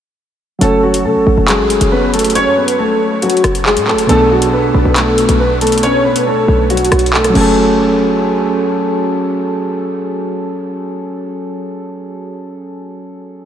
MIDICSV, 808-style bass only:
0, 0, Header, 1, 2, 480
1, 0, Start_track
1, 0, Key_signature, 3, "minor"
1, 0, Tempo, 434783
1, 678, Time_signature, 4, 2, 24, 8
1, 14850, End_track
2, 0, Start_track
2, 0, Title_t, "808-style bass"
2, 0, Program_c, 0, 38
2, 677, Note_on_c, 0, 30, 112
2, 1158, Note_on_c, 0, 49, 103
2, 1174, Note_off_c, 0, 30, 0
2, 1278, Note_on_c, 0, 30, 100
2, 1295, Note_off_c, 0, 49, 0
2, 1392, Note_off_c, 0, 30, 0
2, 1398, Note_on_c, 0, 33, 109
2, 1513, Note_off_c, 0, 33, 0
2, 1518, Note_on_c, 0, 30, 106
2, 1758, Note_on_c, 0, 33, 103
2, 1775, Note_off_c, 0, 30, 0
2, 1878, Note_on_c, 0, 30, 102
2, 1894, Note_off_c, 0, 33, 0
2, 1992, Note_off_c, 0, 30, 0
2, 1998, Note_on_c, 0, 30, 110
2, 2718, Note_on_c, 0, 42, 98
2, 2735, Note_off_c, 0, 30, 0
2, 3078, Note_on_c, 0, 30, 100
2, 3095, Note_off_c, 0, 42, 0
2, 3420, Note_off_c, 0, 30, 0
2, 3798, Note_on_c, 0, 30, 108
2, 4158, Note_on_c, 0, 45, 99
2, 4175, Note_off_c, 0, 30, 0
2, 4338, Note_on_c, 0, 30, 95
2, 4355, Note_off_c, 0, 45, 0
2, 4509, Note_off_c, 0, 30, 0
2, 4518, Note_on_c, 0, 35, 111
2, 5209, Note_off_c, 0, 35, 0
2, 5238, Note_on_c, 0, 35, 109
2, 5353, Note_off_c, 0, 35, 0
2, 5358, Note_on_c, 0, 35, 100
2, 5819, Note_off_c, 0, 35, 0
2, 5838, Note_on_c, 0, 35, 104
2, 6798, Note_on_c, 0, 47, 98
2, 6814, Note_off_c, 0, 35, 0
2, 6977, Note_on_c, 0, 35, 102
2, 6994, Note_off_c, 0, 47, 0
2, 7148, Note_off_c, 0, 35, 0
2, 7157, Note_on_c, 0, 35, 111
2, 7618, Note_off_c, 0, 35, 0
2, 7637, Note_on_c, 0, 35, 108
2, 8111, Note_off_c, 0, 35, 0
2, 8117, Note_on_c, 0, 30, 112
2, 10233, Note_off_c, 0, 30, 0
2, 14850, End_track
0, 0, End_of_file